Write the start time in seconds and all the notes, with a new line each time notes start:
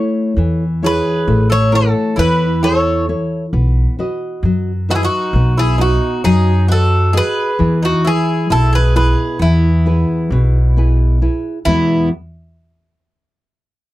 Already playing: A3 E4 A4 C#5
0.36 E2 E3
0.82 E4 G#4 B4 C#5
1.28 A1 A3
1.50 A4 C#5
1.72 E4 F#4 A4 C#5
2.16 E2 E3 E4 B4
2.63 E4 A4 C#5
3.09 E4 A4 C#5
3.53 B1 B3
3.99 F#4 B4 D#5
4.43 F#2 F#3
4.89 D#4 F#4 B4 D#5
4.95 E4 G#4
5.03 D#4 F#4
5.33 B1 B3
5.58 E4 G#4
5.78 D#4 F#4 B4 D#5
6.24 F#2 F#3 D#4 G#4
6.68 F#4 A4 B4 D#5
7.13 F#4 G#4 B4 D#5
7.17 B4
7.59 E2 E3
7.83 D#4 F#4
8.05 E4 G#4 B4
8.50 B1 B2 E4 A4
8.73 G#4 B4
8.96 E4 G#4 B4
9.39 E2 E3 B3 E4
9.86 E4 G#4 B4
10.30 B1 B2
10.77 E4 G#4 B4
11.22 E4 G#4 B4
11.65 E2 B2 E3 G#3 B3 E4